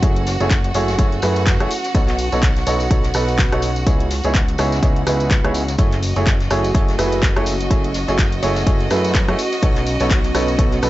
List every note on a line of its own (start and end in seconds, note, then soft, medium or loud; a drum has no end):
0.00 0.38 F#1 loud
0.00 0.20 A3 medium
0.00 3.86 C#4 medium
0.00 0.20 E4 medium
0.00 3.87 F#4 medium
0.00 5.77 F#4 medium
0.00 0.20 F#4 medium
0.00 0.20 G#4 medium
0.00 3.87 B4 medium
0.00 0.20 C#5 medium
0.00 1.71 E5 medium
0.00 5.80 F#5 medium
0.00 kick loud
0.00 closed hi-hat medium
0.00 tambourine soft
0.16 closed hi-hat soft
0.26 snare medium
0.26 closed hi-hat medium
0.26 open hi-hat loud
0.26 tambourine medium
0.40 0.73 F#1 loud
0.40 0.56 A3 medium
0.40 0.56 E4 medium
0.40 0.56 F#4 medium
0.40 0.56 G#4 medium
0.40 0.56 C#5 medium
0.40 closed hi-hat soft
0.40 tambourine medium
0.50 kick loud
0.50 snare loud
0.50 clap loud
0.50 closed hi-hat loud
0.50 closed hi-hat medium
0.50 tambourine soft
0.64 closed hi-hat soft
0.74 0.97 F#1 loud
0.74 0.92 A3 medium
0.74 0.92 E4 medium
0.74 0.92 F#4 medium
0.74 0.93 G#4 medium
0.74 0.92 C#5 loud
0.74 closed hi-hat medium
0.74 open hi-hat loud
0.74 tambourine medium
0.88 snare medium
0.88 closed hi-hat soft
0.88 tambourine medium
0.98 1.21 F#1 loud
0.98 1.16 A3 medium
0.98 1.16 E4 medium
0.98 1.16 F#4 medium
0.98 1.16 G#4 medium
0.98 1.16 C#5 loud
0.98 kick loud
0.98 closed hi-hat loud
0.98 closed hi-hat medium
0.98 tambourine soft
1.12 closed hi-hat soft
1.22 1.58 F#2 loud
1.22 1.57 A3 medium
1.22 1.57 E4 medium
1.22 1.57 F#4 medium
1.22 1.57 G#4 medium
1.22 1.57 B4 loud
1.22 cross-stick medium
1.22 closed hi-hat medium
1.22 open hi-hat loud
1.22 tambourine medium
1.36 closed hi-hat soft
1.36 tambourine soft
1.46 kick loud
1.46 snare loud
1.46 clap loud
1.46 closed hi-hat medium
1.46 closed hi-hat loud
1.46 tambourine soft
1.60 1.67 F#1 loud
1.60 1.69 A3 medium
1.60 1.69 E4 medium
1.60 1.69 F#4 medium
1.60 1.69 G#4 medium
1.60 1.69 C#5 loud
1.60 cross-stick medium
1.60 closed hi-hat soft
1.71 closed hi-hat medium
1.71 open hi-hat loud
1.71 tambourine medium
1.84 snare soft
1.84 closed hi-hat soft
1.84 tambourine medium
1.94 2.30 B1 loud
1.94 2.12 B3 medium
1.94 2.12 D#4 medium
1.94 2.12 F#4 medium
1.94 2.12 A4 medium
1.94 2.12 C#5 medium
1.94 kick loud
1.94 closed hi-hat medium
1.94 tambourine soft
2.08 snare soft
2.08 clap soft
2.08 closed hi-hat soft
2.18 closed hi-hat medium
2.18 open hi-hat loud
2.18 tambourine medium
2.32 2.65 B1 medium
2.32 2.48 B3 medium
2.32 2.48 D#4 medium
2.32 2.48 F#4 medium
2.32 2.48 A4 medium
2.32 2.48 C#5 medium
2.32 5.79 D#5 medium
2.32 closed hi-hat soft
2.32 tambourine medium
2.42 kick loud
2.42 snare loud
2.42 clap loud
2.42 closed hi-hat medium
2.42 tambourine soft
2.56 snare medium
2.56 closed hi-hat soft
2.67 2.89 B1 medium
2.67 2.85 B3 medium
2.67 2.84 D#4 medium
2.67 2.85 F#4 medium
2.67 2.85 A4 medium
2.67 2.84 C#5 loud
2.67 closed hi-hat medium
2.67 open hi-hat loud
2.67 tambourine loud
2.80 closed hi-hat soft
2.80 tambourine medium
2.90 3.13 B1 medium
2.90 3.08 B3 medium
2.90 3.08 D#4 medium
2.90 3.08 F#4 medium
2.90 3.08 A4 medium
2.90 3.08 C#5 loud
2.90 kick loud
2.90 closed hi-hat medium
3.03 snare medium
3.03 closed hi-hat soft
3.14 3.50 B1 loud
3.14 3.49 B3 medium
3.14 3.49 D#4 medium
3.14 3.49 F#4 medium
3.14 3.49 A4 medium
3.14 3.49 B4 loud
3.14 cross-stick medium
3.14 open hi-hat medium
3.14 open hi-hat loud
3.14 tambourine loud
3.28 closed hi-hat soft
3.28 tambourine medium
3.39 kick loud
3.39 snare loud
3.39 clap loud
3.39 closed hi-hat medium
3.39 open hi-hat medium
3.39 tambourine soft
3.52 3.85 B1 medium
3.52 3.68 B3 medium
3.52 3.68 D#4 medium
3.52 3.68 F#4 medium
3.52 3.68 A4 medium
3.52 3.68 C#5 loud
3.52 cross-stick medium
3.52 closed hi-hat soft
3.62 closed hi-hat medium
3.62 open hi-hat loud
3.62 tambourine medium
3.76 closed hi-hat soft
3.76 tambourine medium
3.87 4.22 C#2 medium
3.87 4.04 B3 medium
3.87 10.90 C#4 medium
3.87 4.04 D#4 medium
3.87 4.04 E4 medium
3.87 4.04 G#4 medium
3.87 4.04 C#5 medium
3.87 kick loud
3.87 closed hi-hat medium
3.87 tambourine soft
4.00 closed hi-hat soft
4.10 snare soft
4.10 closed hi-hat medium
4.10 open hi-hat loud
4.10 tambourine medium
4.24 4.57 C#2 medium
4.24 4.40 B3 medium
4.24 4.40 D#4 medium
4.24 4.40 E4 medium
4.24 4.40 G#4 medium
4.24 4.40 C#5 medium
4.24 closed hi-hat soft
4.24 tambourine medium
4.34 kick loud
4.34 snare loud
4.34 clap loud
4.34 closed hi-hat loud
4.34 closed hi-hat medium
4.34 tambourine soft
4.48 10.90 F#4 medium
4.48 closed hi-hat soft
4.58 4.81 C#2 loud
4.58 4.76 B3 medium
4.58 4.76 D#4 medium
4.58 4.76 E4 medium
4.58 4.76 G#4 medium
4.58 4.76 C#5 loud
4.58 cross-stick medium
4.58 closed hi-hat medium
4.58 open hi-hat loud
4.58 tambourine loud
4.72 10.90 B4 medium
4.72 snare medium
4.72 closed hi-hat soft
4.72 tambourine medium
4.83 5.05 C#2 loud
4.83 5.00 B3 medium
4.83 5.00 D#4 medium
4.83 5.00 E4 medium
4.83 5.00 G#4 medium
4.83 5.00 C#5 loud
4.83 kick loud
4.83 closed hi-hat medium
4.83 tambourine soft
4.96 closed hi-hat soft
5.07 5.42 C#2 medium
5.07 5.41 B3 medium
5.07 5.41 D#4 medium
5.07 5.41 E4 medium
5.07 5.41 G#4 medium
5.07 5.41 B4 medium
5.07 cross-stick medium
5.07 closed hi-hat medium
5.07 open hi-hat loud
5.07 tambourine loud
5.20 closed hi-hat soft
5.20 tambourine medium
5.30 kick loud
5.30 snare loud
5.30 clap loud
5.30 closed hi-hat medium
5.44 5.77 C#2 loud
5.44 5.60 B3 medium
5.44 5.60 D#4 medium
5.44 5.60 E4 medium
5.44 5.60 G#4 medium
5.44 5.60 C#5 loud
5.44 cross-stick medium
5.44 closed hi-hat soft
5.54 closed hi-hat medium
5.54 open hi-hat loud
5.54 tambourine medium
5.68 snare soft
5.68 closed hi-hat soft
5.68 tambourine medium
5.78 6.14 F#1 loud
5.78 5.96 A3 medium
5.78 5.96 E4 medium
5.78 10.90 F#4 medium
5.78 5.96 F#4 medium
5.78 5.96 G#4 medium
5.78 5.97 C#5 medium
5.78 10.90 D#5 medium
5.78 kick loud
5.78 closed hi-hat medium
5.78 tambourine soft
5.92 snare soft
5.92 clap soft
5.92 closed hi-hat soft
6.02 closed hi-hat medium
6.02 open hi-hat loud
6.02 tambourine medium
6.16 6.49 F#1 medium
6.16 6.32 A3 medium
6.16 6.32 E4 medium
6.16 6.32 F#4 medium
6.16 6.32 G#4 medium
6.16 6.32 C#5 medium
6.16 closed hi-hat soft
6.16 tambourine soft
6.27 kick loud
6.27 snare loud
6.27 clap loud
6.27 closed hi-hat medium
6.27 tambourine soft
6.40 snare medium
6.40 closed hi-hat soft
6.50 6.73 F#1 medium
6.50 6.68 A3 medium
6.50 6.68 E4 medium
6.50 6.68 F#4 medium
6.50 6.68 G#4 medium
6.50 6.68 C#5 loud
6.50 cross-stick medium
6.50 closed hi-hat medium
6.50 open hi-hat loud
6.50 tambourine medium
6.64 closed hi-hat soft
6.64 tambourine medium
6.74 6.97 F#1 medium
6.74 6.92 A3 medium
6.74 6.92 E4 medium
6.74 6.92 F#4 medium
6.74 6.92 G#4 medium
6.74 6.92 C#5 loud
6.74 kick loud
6.74 closed hi-hat medium
6.74 tambourine soft
6.88 snare medium
6.88 closed hi-hat soft
6.98 7.34 F#1 loud
6.98 7.33 A3 medium
6.98 7.33 E4 medium
6.98 7.33 F#4 medium
6.98 7.33 G#4 medium
6.98 7.33 B4 loud
6.98 cross-stick medium
6.98 open hi-hat medium
6.98 open hi-hat loud
6.98 tambourine medium
7.12 closed hi-hat soft
7.12 tambourine medium
7.22 kick loud
7.22 snare loud
7.22 clap loud
7.22 closed hi-hat medium
7.22 open hi-hat medium
7.22 tambourine soft
7.36 7.69 F#1 loud
7.36 7.52 A3 medium
7.36 7.52 E4 medium
7.36 7.52 F#4 medium
7.36 7.52 G#4 medium
7.36 7.52 C#5 loud
7.36 cross-stick medium
7.36 closed hi-hat soft
7.46 closed hi-hat medium
7.46 open hi-hat loud
7.46 tambourine medium
7.60 closed hi-hat soft
7.60 tambourine soft
7.70 8.06 F#1 loud
7.70 7.88 A3 medium
7.70 7.88 E4 medium
7.70 7.88 F#4 medium
7.70 7.88 G#4 medium
7.70 7.88 C#5 medium
7.70 kick loud
7.70 closed hi-hat medium
7.70 tambourine soft
7.84 closed hi-hat soft
7.94 snare medium
7.94 closed hi-hat medium
7.94 open hi-hat medium
7.94 tambourine medium
8.08 8.41 F#1 medium
8.08 8.24 A3 medium
8.08 8.24 E4 medium
8.08 8.24 F#4 medium
8.08 8.24 G#4 medium
8.08 8.24 C#5 medium
8.08 closed hi-hat soft
8.08 tambourine medium
8.18 kick loud
8.18 snare loud
8.18 clap loud
8.18 closed hi-hat medium
8.18 tambourine soft
8.32 closed hi-hat soft
8.42 8.65 F#1 loud
8.42 8.60 A3 medium
8.42 8.60 E4 medium
8.42 8.60 F#4 medium
8.42 8.60 G#4 medium
8.42 8.60 C#5 loud
8.42 closed hi-hat medium
8.42 open hi-hat loud
8.42 tambourine medium
8.56 snare medium
8.56 closed hi-hat soft
8.56 tambourine medium
8.67 8.89 F#1 medium
8.67 8.84 A3 medium
8.67 8.84 E4 medium
8.67 8.84 F#4 medium
8.67 8.84 G#4 medium
8.67 8.84 C#5 loud
8.67 kick loud
8.67 closed hi-hat medium
8.67 tambourine soft
8.80 closed hi-hat soft
8.90 9.26 F#2 loud
8.90 9.25 A3 medium
8.90 9.25 E4 medium
8.90 9.25 F#4 medium
8.90 9.25 G#4 medium
8.90 9.25 B4 loud
8.90 cross-stick medium
8.90 closed hi-hat medium
8.90 open hi-hat loud
8.90 tambourine medium
9.04 closed hi-hat soft
9.04 tambourine medium
9.15 kick loud
9.15 snare loud
9.15 clap loud
9.15 closed hi-hat medium
9.28 9.35 F#2 medium
9.28 9.37 A3 medium
9.28 9.37 E4 medium
9.28 9.37 F#4 medium
9.28 9.37 G#4 medium
9.28 9.37 C#5 loud
9.28 cross-stick medium
9.28 closed hi-hat soft
9.38 closed hi-hat medium
9.38 open hi-hat loud
9.38 tambourine medium
9.52 snare soft
9.52 closed hi-hat soft
9.52 tambourine soft
9.62 9.98 B1 loud
9.62 9.80 B3 medium
9.62 9.80 D#4 medium
9.62 9.80 F#4 medium
9.62 9.80 A4 medium
9.62 9.80 C#5 medium
9.62 kick loud
9.62 closed hi-hat medium
9.76 snare soft
9.76 clap soft
9.76 closed hi-hat soft
9.86 closed hi-hat medium
9.86 open hi-hat medium
9.86 tambourine medium
10.00 10.33 B1 medium
10.00 10.16 B3 medium
10.00 10.16 D#4 medium
10.00 10.16 F#4 medium
10.00 10.16 A4 medium
10.00 10.16 C#5 medium
10.00 closed hi-hat soft
10.00 tambourine soft
10.10 kick loud
10.10 snare loud
10.10 clap loud
10.10 closed hi-hat medium
10.24 snare medium
10.24 closed hi-hat soft
10.35 10.57 B1 medium
10.35 10.52 B3 medium
10.35 10.52 D#4 medium
10.35 10.52 F#4 medium
10.35 10.52 A4 medium
10.35 10.53 C#5 loud
10.35 10.90 D#5 medium
10.35 cross-stick medium
10.35 closed hi-hat medium
10.35 open hi-hat loud
10.35 tambourine medium
10.48 closed hi-hat soft
10.48 tambourine medium
10.59 10.81 B1 medium
10.59 10.76 B3 medium
10.59 10.76 D#4 medium
10.59 10.76 F#4 medium
10.59 10.76 A4 medium
10.59 10.76 C#5 loud
10.59 kick loud
10.59 closed hi-hat medium
10.59 closed hi-hat loud
10.59 tambourine soft
10.72 snare medium
10.72 closed hi-hat soft
10.81 10.90 B1 loud
10.81 10.90 B3 medium
10.81 10.90 D#4 medium
10.81 10.90 F#4 medium
10.81 10.90 A4 medium
10.81 10.90 B4 medium
10.81 cross-stick medium
10.81 open hi-hat medium
10.81 open hi-hat loud
10.81 tambourine medium